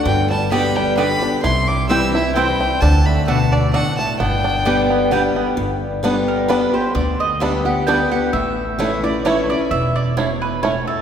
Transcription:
0.05 G1 G2 D3 G5
0.30 G3 A5
0.51 D3 G3 B3 G4 D5 G5 B5
0.76 G3 G5
0.97 D3 G3 B3 G4 D5 G5 B5
1.22 B3 D4 G4
1.43 C2 C3 E4 C6
1.68 G3 D6
1.89 E3 G3 C4 E4 G4 C5 G5 E6
2.14 C4 E4 E5
2.35 E3 G3 C4 E4 C5 G5
2.60 G3 C4 E4
2.81 D2 D3 D4 A5
3.06 A3 B5
3.27 B2 A3 D4 F#4 D5 F#5 A5
3.52 D4 D5
3.73 A2 A3 D4 F#4 D5 F#5
3.98 A3 A5
4.20 G1 G2 B3 G5
4.44 D4
4.65 D3 G3 B3 G4 D5 G5
4.90 B3
5.11 D3 G3 B3 G4 D5 G5
5.36 B3
5.57 G1 G2
6.03 D3 G3 B3 D4 G4
6.28 A#4
6.48 D3 G3 B3 D4 G4 B4
6.73 B3 G4 C5
6.95 D2 D3 D5
7.20 D#5
7.40 D3 G3 B3 D4 G4 E5
7.65 B3 G4 F#5
7.87 D3 G3 B3 D4 G4 G5
8.12 B3 G4 F#5
8.33 A1 A2 E5
8.79 E3 A3 C#4 E4
9.03 C#4 E4 D5
9.25 E3 A3 C#4 E4 C#5
9.50 C#4 E4 D5
9.71 E1 E2 E5
9.96 D5
10.17 B2 A3 C#4 E4 C#5
10.42 B4
10.63 A2 A3 C#4 E4 C#5
10.87 A4

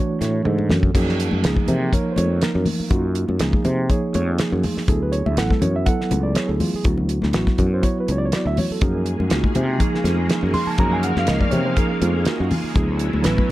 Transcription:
Already playing: E3 A3 D4 F#4 C#5
0.21 A2 C#5, snare, closed hi-hat, high conga
0.43 G#2 E3 A3 D4 A4, high tom
0.58 high conga
0.70 F#2, snare, high conga, low conga
0.83 kick
0.94 F#2 F3 A#3 D#4 G#4, kick, closed hi-hat, crash
1.09 snare
1.20 closed hi-hat
1.31 F#2, high conga
1.42 C#2 F3 A#3 D#4 G#4, snare, closed hi-hat
1.56 muted fretless electric bass stroke, kick, high conga
1.68 C3 A#4, closed hi-hat, low conga
1.92 F3 A#3 D#4 A#4 C#5, kick, closed hi-hat
2.12 C5
2.16 F2 C#5, closed hi-hat, high conga
2.42 F3 A#3 D#4 A#4, snare, closed hi-hat
2.55 F#2
2.66 open hi-hat, high conga, low conga
2.80 muted fretless electric bass stroke
2.90 F#2 A#3 D#4 F4 F#4, kick, closed hi-hat
3.15 closed hi-hat
3.28 F#2, high conga
3.39 C#2 F3 A#3 D#4 G#4, snare, closed hi-hat
3.53 muted fretless electric bass stroke, kick, high conga
3.65 C3 C5, closed hi-hat, low conga
3.89 F3 A#3 D#4 G#4 C#5, kick, closed hi-hat
4.14 F2 C#5, closed hi-hat, high conga
4.38 F3 A#3 D#4 G#4, snare, closed hi-hat
4.52 F#2
4.63 open hi-hat, high conga, low conga
4.77 muted fretless electric bass stroke, snare
4.87 D2 F#3 B3 E4 G#4 A4, kick, closed hi-hat
5.03 B4
5.12 C#5, closed hi-hat
5.26 D2 E5, high conga
5.37 A1 F#3 B3 E4 A4 F#5, snare, closed hi-hat
5.50 A4, muted fretless electric bass stroke, kick, snare, high conga
5.62 F#2 C#5, closed hi-hat, low conga
5.76 E5
5.86 F#3 B3 E4 A4 F#5, kick, closed hi-hat
6.01 snare
6.11 C#2, closed hi-hat, high conga
6.23 D5
6.34 F#3 B3 E4 G#4 C#5, snare, closed hi-hat
6.48 D2 A4
6.60 F4, open hi-hat, high conga, low conga
6.74 G#4, muted fretless electric bass stroke
6.83 D2 F#3 B3 E4 F#4, kick, closed hi-hat
6.98 low conga
7.09 closed hi-hat
7.22 D2, snare, high conga
7.33 A1 F#3 B3 E4 F#4, snare, closed hi-hat
7.47 muted fretless electric bass stroke, kick, snare, high conga
7.58 F#2, kick, closed hi-hat, low conga
7.74 C5
7.82 F#3 B3 E4 F#4 C#5, kick, closed hi-hat
8.00 B4
8.08 C#2 C#5, closed hi-hat
8.18 D5
8.25 C#5
8.32 F#3 B3 E4 F#4, snare, closed hi-hat
8.36 D5
8.45 D2 E5
8.57 C#5, open hi-hat, high conga, low conga
8.70 A4, muted fretless electric bass stroke
8.81 F#2 C#3 F3 G#3 A#3 D#4 G#4 A#4, kick, closed hi-hat
9.06 closed hi-hat
9.20 F#2, high conga
9.29 C#2 A#3 D#4 F4 F#4, snare, closed hi-hat
9.44 muted fretless electric bass stroke, kick, high conga
9.55 C3, closed hi-hat, low conga
9.78 F3 A#3 D#4 G#4, kick, closed hi-hat
9.95 snare
10.04 F2, snare, closed hi-hat, high conga
10.28 F3 A#3 D#4 G#4, snare, closed hi-hat
10.43 F#2
10.54 C6, open hi-hat, high conga, low conga
10.67 A5, muted fretless electric bass stroke
10.78 F#2 F3 A#3 D#4 G#4 F5 A#5, kick, closed hi-hat
10.93 G#5
11.03 F#5, closed hi-hat
11.16 F#2 F5, snare, high conga
11.27 C#2 F3 A#3 D#4 A#4 D#5, snare, closed hi-hat
11.40 D5, muted fretless electric bass stroke, kick, high conga
11.51 C3 C#5, closed hi-hat, low conga
11.65 C5
11.76 F3 A#3 D#4 G#4 A#4, kick, closed hi-hat
11.91 C#4
12.01 F2 F4, closed hi-hat, high conga
12.18 G#4
12.25 A#3 D#4 F4 F#4 A#4, snare, closed hi-hat
12.40 F#2 F#4
12.51 open hi-hat, high conga, low conga
12.64 muted fretless electric bass stroke
12.74 D2 D3 F#3 B3 C#4 E4 G#4, kick, closed hi-hat
12.99 closed hi-hat
13.13 D2, high conga
13.21 F#3 B3 E4 B4, snare, closed hi-hat
13.26 A1
13.38 muted fretless electric bass stroke, kick, high conga

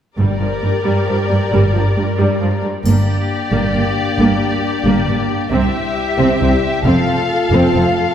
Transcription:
0.18 G1 G2 G3 G4 A#4 D5
0.40 G2 F3
0.62 G2 G3
0.84 G2 G3
1.06 G2 F3
1.28 G2 G3
1.51 G1 G2 G3
1.73 G2 F3
1.96 G2 G3
2.18 G2 G3
2.41 G2 F3
2.63 G2 G3
2.84 G1 G2 A#3 D4 G4 D5, triangle
3.52 G1 G2 A#3
3.74 G1 G2 A#3
4.18 G1 G2 A#3
4.85 G1 G2 A#3
5.07 G1 G2 A#3
5.51 C2 C3 G3 C4 E4 G4 E5
6.18 C2 C3 C4
6.40 C2 C3 C4
6.85 F1 F2 A3 C4 F4 A4 F5
7.52 F1 F2 C4
7.74 F1 F2 C4

